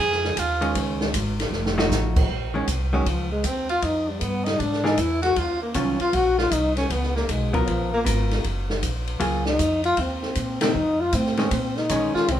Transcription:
Already playing: tenor saxophone G#4
0.00 upright bass F2
0.12 snare
0.24 snare
0.37 upright bass D#2, tenor saxophone F4, kick, hi-hat pedal, ride
0.61 hollow-body jazz guitar D#3 G#3 C#4, ride
0.75 upright bass C#2, kick, ride
1.01 snare
1.14 upright bass G#1, kick, hi-hat pedal, ride
1.40 snare, ride
1.51 upright bass F1, snare
1.66 snare
1.78 hollow-body jazz guitar F3 A3 D#4 F#4, snare
1.90 upright bass A1, snare, hi-hat pedal
2.16 kick, crash
2.29 upright bass A#1, kick
2.54 hollow-body jazz guitar D#3 G#3 C#4
2.68 upright bass C2, kick, hi-hat pedal, ride
2.93 hollow-body jazz guitar D#3 G#3 C#4, tenor saxophone F#3, trombone F#3
3.06 upright bass C#2, tenor saxophone F3, trombone F3, kick, ride
3.32 tenor saxophone G#3, trombone G#3
3.44 upright bass D#2, tenor saxophone C4, kick, hi-hat pedal, ride
3.48 trombone C4
3.69 tenor saxophone F4, trombone F4, ride
3.82 upright bass F2, tenor saxophone D#4, trombone D#4, kick, ride
4.08 tenor saxophone G3, trombone G3
4.20 upright bass G2, tenor saxophone B3, kick, hi-hat pedal, ride
4.25 trombone B3
4.45 tenor saxophone D#4, trombone D#4, snare, ride
4.59 upright bass G#2, tenor saxophone D4, trombone D4, kick, ride
4.73 snare
4.84 hollow-body jazz guitar E3 A#3 D4 G#4, tenor saxophone D#4, trombone D#4, snare
4.97 upright bass E2, tenor saxophone E4, trombone E4, kick, hi-hat pedal, ride
5.22 tenor saxophone F#4, trombone F#4, snare, ride
5.36 upright bass D#2, tenor saxophone F4, trombone F4, kick, ride
5.62 tenor saxophone A#3, trombone A#3
5.74 upright bass C2, hollow-body jazz guitar D#3 F#3 C#4 F4, tenor saxophone C#4, kick, hi-hat pedal, ride
5.79 trombone C#4
6.00 tenor saxophone F4, trombone F4, muted upright bass stroke, ride
6.13 upright bass A#1, trombone F#4, tenor saxophone F#4, kick, ride
6.38 tenor saxophone F4, trombone F4, snare
6.52 upright bass C2, tenor saxophone D#4, trombone D#4, kick, hi-hat pedal, ride
6.77 trombone C#4, tenor saxophone C#4, snare, ride
6.90 upright bass C#2, tenor saxophone B3, trombone B3, kick, ride
7.03 snare
7.16 tenor saxophone A#3, trombone A#3, snare
7.29 upright bass B1, trombone G#3, tenor saxophone G#3, kick, hi-hat pedal, ride
7.53 trombone F#3, tenor saxophone F#3, hollow-body jazz guitar B3 F4 A#4, kick, ride
7.68 upright bass A#1, trombone F3, tenor saxophone F3, kick, ride
7.93 trombone A#3, tenor saxophone A#3
8.05 upright bass G#1, hollow-body jazz guitar B3 F4 A#4, kick, hi-hat pedal, ride
8.31 snare, ride
8.44 upright bass F#1, kick, ride
8.70 snare
8.83 upright bass A#1, kick, hi-hat pedal, ride
9.07 ride
9.20 upright bass C#2, hollow-body jazz guitar F#3 A#3 F4 G#4, kick, ride
9.45 tenor saxophone D#4, trombone D#4, snare
9.59 upright bass F2, kick, hi-hat pedal, ride
9.84 trombone F4, tenor saxophone F4, ride
9.97 upright bass D#2, tenor saxophone C4, trombone C4, kick, ride
10.22 snare
10.35 upright bass A#2, kick, hi-hat pedal, ride
10.61 hollow-body jazz guitar D#3 A3 C4, trombone D#4, tenor saxophone D#4, snare, ride
10.75 upright bass F2
11.00 tenor saxophone F4, trombone F4
11.13 upright bass A2, tenor saxophone C4, trombone C4, kick, hi-hat pedal, ride
11.26 snare
11.37 hollow-body jazz guitar D#3 G#3 C#4, snare, ride
11.51 upright bass A#2, kick, ride
11.76 trombone D#4, tenor saxophone D#4, snare
11.89 upright bass A#1, hollow-body jazz guitar D#3 G#3 C#4, kick, hi-hat pedal, ride
12.14 tenor saxophone F4, trombone F4, muted upright bass stroke, snare
12.28 upright bass C2, tenor saxophone C4, trombone C4, kick, ride

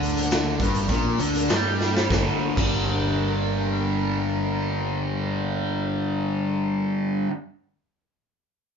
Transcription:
Already playing: fingered electric bass D2, distorted electric guitar D3, string section G3 A#3 D4 A#4
0.02 closed hi-hat, tambourine
0.17 closed hi-hat
0.30 snare, closed hi-hat, tambourine
0.60 fingered electric bass G1, distorted electric guitar G2, kick, closed hi-hat, tambourine
0.75 closed hi-hat
0.88 fingered electric bass A#1, distorted electric guitar A#2, kick, closed hi-hat, tambourine
1.17 fingered electric bass D2, distorted electric guitar D3, closed hi-hat, tambourine
1.34 closed hi-hat
1.48 fingered electric bass G2, distorted electric guitar G3, snare, closed hi-hat, tambourine
1.79 snare, tambourine
1.97 snare
2.09 fingered electric bass G1, distorted electric guitar G2 D3, string section G3 A#3 D4 A#4, kick, snare, tambourine
2.13 distorted electric guitar G3
2.57 fingered electric bass G1, distorted electric guitar G2 D3, kick, crash, tambourine
2.61 distorted electric guitar G3

